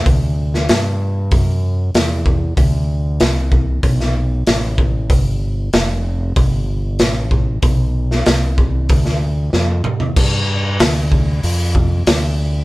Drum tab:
CC |----------------|----------------|----------------|----------------|
HH |o---o---o---o---|o---o---o---o---|o---o---o---o---|o---o---o-------|
SD |---oo-------o---|----o----o--o---|----o-------o---|---oo----o--o---|
T2 |----------------|----------------|----------------|--------------o-|
FT |----------------|----------------|----------------|---------------o|
BD |o-------o-----o-|o-----o-o-----o-|o-------o-----o-|o-----o-o-------|

CC |x---------------|
HH |----o---o---o---|
SD |----o-------o---|
T2 |----------------|
FT |----------------|
BD |o-----o---o-----|